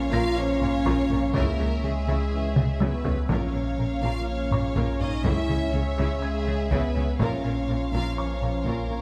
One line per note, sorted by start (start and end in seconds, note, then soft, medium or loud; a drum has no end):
0.00 1.36 A#1 medium
0.00 1.34 A#3 medium
0.00 0.13 C#4 loud
0.00 1.31 C#4 medium
0.00 1.34 F4 medium
0.00 0.11 C#5 medium
0.00 1.31 C#5 medium
0.00 1.30 F5 medium
0.12 0.20 A#1 medium
0.12 0.20 A#2 medium
0.12 0.37 F4 loud
0.12 0.35 F4 medium
0.12 0.35 A#4 medium
0.12 0.36 F5 loud
0.12 1.55 A#6 medium
0.36 0.54 F3 medium
0.36 0.54 C#4 medium
0.36 1.35 C#4 loud
0.36 1.34 C#5 medium
0.61 0.69 A#1 medium
0.61 0.69 A#2 medium
0.61 0.70 A#4 medium
0.61 taiko low-mid medium
0.86 0.94 A#1 medium
0.86 0.94 A#2 medium
0.86 2.28 F4 soft
0.86 1.08 F4 medium
0.86 1.08 A#4 medium
0.86 2.28 C#6 medium
0.86 taiko medium
1.10 1.18 A#1 medium
1.10 1.18 A#2 medium
1.10 1.19 A#4 medium
1.10 1.19 C#5 medium
1.10 taiko low-mid medium
1.34 1.42 C#2 medium
1.34 3.31 C#2 medium
1.34 1.43 C#3 medium
1.34 1.51 E3 medium
1.34 3.29 G#3 medium
1.34 1.82 A#3 medium
1.34 7.15 C#4 medium
1.34 1.52 C#4 medium
1.34 1.57 E4 medium
1.34 1.58 G#4 medium
1.34 1.82 A#4 medium
1.34 7.15 C#5 medium
1.34 3.29 E5 medium
1.34 3.06 E5 medium
1.34 taiko medium
1.59 1.67 C#2 medium
1.59 1.67 C#3 medium
1.59 1.68 G#4 soft
1.59 1.67 C#5 soft
1.83 1.91 C#2 medium
1.83 1.91 C#3 medium
1.83 2.65 G#3 medium
1.83 2.81 G#4 medium
1.83 1.92 G#4 medium
2.07 2.15 C#2 medium
2.07 2.16 C#3 medium
2.07 2.30 E4 medium
2.07 2.30 G#4 medium
2.31 2.48 E3 medium
2.31 2.49 C#4 medium
2.56 2.64 C#2 soft
2.56 2.64 C#3 soft
2.56 2.64 G#4 soft
2.56 taiko mid medium
2.80 2.89 C#2 medium
2.80 2.89 C#3 medium
2.80 3.29 B3 medium
2.80 3.03 E4 medium
2.80 4.23 F#4 soft
2.80 3.03 G#4 medium
2.80 3.29 B4 medium
2.80 4.23 E6 soft
2.80 taiko high medium
3.05 3.13 C#2 medium
3.05 3.13 C#3 soft
3.05 3.13 G#4 medium
3.05 3.13 C#5 soft
3.05 taiko low medium
3.29 5.26 A#1 medium
3.29 3.37 A#1 medium
3.29 3.38 A#2 medium
3.29 5.20 C#3 medium
3.29 5.25 A#3 medium
3.29 7.16 C#4 medium
3.29 4.03 C#4 medium
3.29 3.52 F4 medium
3.29 3.52 A#4 medium
3.29 4.01 C#5 medium
3.29 5.20 F5 medium
3.29 5.25 F5 medium
3.29 taiko medium
3.54 3.62 A#1 medium
3.54 3.62 A#2 soft
3.54 3.62 A#4 soft
3.54 3.62 C#5 soft
3.78 3.87 A#1 soft
3.78 3.86 A#2 soft
3.78 3.86 A#4 soft
4.02 4.11 A#1 medium
4.02 4.10 A#2 medium
4.02 4.27 F4 medium
4.02 4.25 F4 medium
4.02 4.25 A#4 medium
4.02 4.27 F5 medium
4.27 4.99 C#4 medium
4.27 4.98 C#5 medium
4.51 4.59 A#1 soft
4.51 4.59 A#2 soft
4.51 5.94 F4 soft
4.51 4.60 A#4 soft
4.51 5.94 C#6 medium
4.51 taiko low-mid medium
4.76 4.84 A#1 medium
4.76 4.84 A#2 medium
4.76 4.99 F4 medium
4.76 4.99 A#4 medium
4.76 taiko medium
5.00 5.08 A#1 medium
5.00 5.08 A#2 soft
5.00 5.25 D#4 medium
5.00 5.09 A#4 soft
5.00 5.09 C#5 medium
5.00 5.24 D#5 medium
5.00 taiko low-mid soft
5.24 5.32 C#2 medium
5.24 7.21 C#2 medium
5.24 7.15 C#3 medium
5.24 5.32 C#3 medium
5.24 7.20 G#3 medium
5.24 5.47 E4 medium
5.24 5.73 E4 medium
5.24 5.48 G#4 medium
5.24 7.19 E5 medium
5.24 7.20 E5 medium
5.24 5.74 E5 medium
5.24 taiko medium
5.49 5.57 C#2 medium
5.49 5.57 C#3 medium
5.49 5.58 G#4 soft
5.49 5.59 C#5 soft
5.73 5.81 C#2 medium
5.73 5.81 C#3 soft
5.73 6.21 C#4 medium
5.73 5.83 G#4 medium
5.73 6.22 C#5 medium
5.98 6.06 C#2 medium
5.98 6.06 C#3 medium
5.98 6.21 E4 medium
5.98 6.21 G#4 medium
6.21 6.70 G#3 medium
6.21 6.70 G#4 medium
6.21 7.64 G#6 medium
6.46 6.54 C#2 soft
6.46 6.55 C#3 medium
6.46 6.56 G#4 medium
6.70 6.79 C#2 medium
6.70 6.79 C#3 medium
6.70 7.19 B3 loud
6.70 6.94 E4 medium
6.70 6.94 G#4 medium
6.70 7.19 B4 medium
6.70 taiko medium
6.95 7.03 C#2 medium
6.95 7.03 C#3 medium
6.95 7.04 G#4 medium
6.95 7.04 C#5 medium
7.19 7.27 A#1 medium
7.19 9.02 A#1 medium
7.19 7.28 A#2 medium
7.19 9.02 F3 medium
7.19 9.02 A#3 medium
7.19 9.02 C#4 medium
7.19 7.93 C#4 medium
7.19 7.43 F4 medium
7.19 9.02 F4 medium
7.19 7.43 A#4 medium
7.19 7.92 C#5 medium
7.19 9.02 C#5 medium
7.19 9.02 F5 medium
7.19 taiko medium
7.44 7.52 A#1 medium
7.44 7.52 A#2 soft
7.44 7.53 A#4 soft
7.44 7.52 C#5 soft
7.68 7.76 A#1 soft
7.68 7.77 A#2 soft
7.68 7.77 A#4 medium
7.93 8.01 A#1 medium
7.93 8.01 A#2 medium
7.93 8.16 F4 medium
7.93 8.17 F4 medium
7.93 8.16 A#4 medium
7.93 8.17 F5 medium
8.17 8.65 C#4 medium
8.17 8.65 C#5 medium
8.17 9.02 C#5 soft
8.17 9.02 C#6 soft
8.42 8.50 A#1 soft
8.42 8.50 A#2 soft
8.42 8.51 A#4 soft
8.66 8.74 A#1 medium
8.66 8.74 A#2 medium
8.66 9.02 A#3 medium
8.66 8.89 F4 medium
8.66 8.89 A#4 soft
8.66 9.02 A#4 medium
8.66 taiko medium
8.90 8.98 A#1 soft
8.90 8.98 A#2 soft
8.90 8.99 A#4 soft
8.90 8.99 C#5 soft
8.90 9.02 A#5 soft